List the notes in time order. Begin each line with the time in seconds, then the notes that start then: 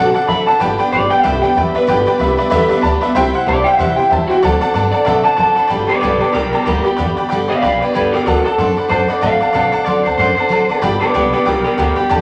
Already playing: B2 D3 F#3 C4 D4 F#4
0.00 A4
0.14 D4 A4 D5 F#5, muted upright bass stroke
0.18 C4
0.27 D3 F#3 C4 D4 A4 D5 E5 B5
0.32 A4
0.46 D4 A4 D5 F#5 A5, muted upright bass stroke
0.50 C4
0.59 G1 G2 D3 G3 B3 D4 G4 B4 D5 G5
0.78 G3 B3 D4 G4 B4 D5 G5, muted upright bass stroke
0.92 G1 G3 B3 D4 G4 B4 D5 G5
1.10 G3 B3 D4 G4 B4 D5 G5
1.23 C2 G2 D3 G3 B3 D4 G4 B4 D5 E5 G5
1.42 G3 B3 D4 G4 B4 D5 G5, muted upright bass stroke
1.55 E2 G3 B3 D4 G4 B4 D5 E5 G5
1.74 G3 B3 D4 G4 B4 D5 E5, muted upright bass stroke
1.86 G1 G2 D3 G3 B3 D4 G4 B4 D5 G5
2.06 G3 B3 D4 G4 B4 D5 G5, muted upright bass stroke
2.19 C2 G3 B3 D4 G4 B4 D5 E5
2.37 G3 B3 D4 G4 B4 D5 E5, muted upright bass stroke
2.50 E2 G2 D3 G3 B3 D4 G4 B4 D5 E5
2.69 D4 G4 B4 D5 E5, muted upright bass stroke
2.73 G3 B3
2.81 D2 G3 B3 B4 D5 A5
2.86 D4 G4
3.01 B3 D4 G4 B4 D5 E5, muted upright bass stroke
3.05 G3
3.15 C2 C3 G3 C4 E4 G4 C5 E5 G5
3.33 C4 E4 G4 C5 E5 F#5, muted upright bass stroke
3.47 C2 G3 C4 E4 G4 C5 D5 E5 A5
3.64 C4 E4 G4 C5 E5 G5, muted upright bass stroke
3.77 E2 C3 G3 C4 E4 G4 C5 E5 F#5
3.96 C4 E4 G4 C5 E5 G5, muted upright bass stroke
4.09 E2 G3 C4 E4 G4 C5 E5 A5
4.28 E4 F#4 G4 C5 E5 G5, muted upright bass stroke
4.32 C4
4.43 D2 D3 F#3 C4 D4 A4 D5 F#5 A5
4.61 C4 D4 A4 D5 F#5 A5, muted upright bass stroke
4.74 G2 F#3 C4 D4 A4 D5 F#5 A5
4.91 C4 D4 A4 D5 F#5 A5, muted upright bass stroke
5.05 B2 D3 F#3 C4 D4 A4 D5 E5 F#5 A5
5.24 C4 D4 A4 D5 F#5 A5, muted upright bass stroke
5.37 D3 F#3 C4 D4 A4 D5 F#5 A5
5.55 D4 A4 D5 F#5 B5, muted upright bass stroke
5.59 C4
5.67 G1 G2 D3 G3 B3 D4 D5 G5 B5
5.72 G4
5.87 B3 D4 G4 B4 D5 G5 B5, muted upright bass stroke
5.92 G3
6.01 B1 G2 D3 G3 B3 D4 G4 B4 D5 G5 B5
6.19 D4 G4 B4 D5 G5 A5, muted upright bass stroke
6.24 G3 B3
6.32 B1 G3 B3 G4 A#4 D5 G5 D6
6.37 D4 G4
6.53 G3 B3 D4 G4 A#4 D5 G5 A5, muted upright bass stroke
6.66 D2 G2 D3 G3 B3 D4 G4 A#4 D5 G5 B5
6.84 B3 D4 G4 D5 G5 B5
6.88 G3
6.97 E2 G2 D3 G3 B3 D4 G4 D5 G5 B5
7.17 G3 B3 D4 G4 D5 G5 B5, muted upright bass stroke
7.29 B1 G2 D3 G3 B3 D5 G5 B5
7.33 D4 G4
7.48 G1 G3 B3 D4 G4 D5 F5 G5 B5
7.62 B1 G3 B3 D4 D5 F5 G5 B5
7.66 G4
7.81 B3 D4 G4 B4 D5 G5 B5, muted upright bass stroke
7.85 G3
7.93 D2 G2 D3 G3 B3 D4 G4 B4 D5 G5 B5
8.12 E2 G3 B3 D4 G4 A#4 D5 G5 D6
8.26 D2 D3 F#3 C4 D4 F#4 A4 A#4 D5 F#5 A5
8.44 C4 D4 A4 D5 F#5 A5
8.58 F#2 D3 F#3 C4 D4 A4 D5 F#5 C6
8.76 C4 D4 A4 D5 F#5 B5, muted upright bass stroke
8.89 F#2 F#3 C4 D4 A4 C5 D5 F#5 A5
9.08 C4 D4 A4 D5 F#5 B5, muted upright bass stroke
9.21 A2 D3 F#3 C4 D4 A4 D5 F5 F#5 A5
9.41 C4 D4 A4 D5 F#5 A5, muted upright bass stroke
9.53 B2 D3 F#3 C4 D4 A4 D5 F#5 A5
9.72 C4 D4 A4 D5 F#5 A5, muted upright bass stroke
9.85 F#2 D3 F#3 C4 D4 A4 D5 F#5 C6
10.03 D2 D4 A4 C5 D5 F#5 A5
10.08 C4
10.17 F#2 F#3 C4 D4 A4 C5 D5 F#5 C6
10.35 D4 A4 C5 D5 F#5, muted upright bass stroke
10.40 C4 A5
10.49 A2 D3 F#3 C4 D4 A4 D5 F#5 A5
10.68 F#2 C4 D4 A4 D5 F#5 A5
10.81 G1 G2 D3 G3 B3 D4 G4 D5 G5 B5
11.00 G3 B3 D4 G4 B4 D5 G5 A5, muted upright bass stroke
11.14 B1 G2 D3 G3 B3 D4 G4 B4 D5 G5 B5
11.33 G3 B3 D4 G4 B4 D5 G5 B5, muted upright bass stroke
11.45 B1 G3 B3 D4 G4 A#4 D5 G5 D6
11.64 G3 B3 D4 G4 A#4 D5 G5 B5, muted upright bass stroke
11.78 D2 G2 D3 G3 B3 D4 G4 A#4 D5 G5 B5
11.96 G3 B3 D4 G4 D5 G5 B5, muted upright bass stroke
12.09 E2 G2 D3 G3 B3 D4 G4 D5 G5 A5